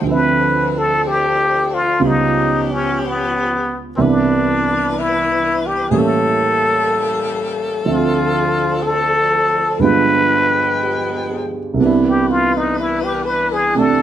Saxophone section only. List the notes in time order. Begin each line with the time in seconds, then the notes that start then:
Already playing: F3
0.06 C4 D4 A4
2.02 B3 C#4 G4
3.95 E3 D4 B4
5.90 G3 A#3 C#4 A4
7.84 F3 C4 D4
9.80 G#3 B3 G5
11.80 E3 D4 B4
13.74 A4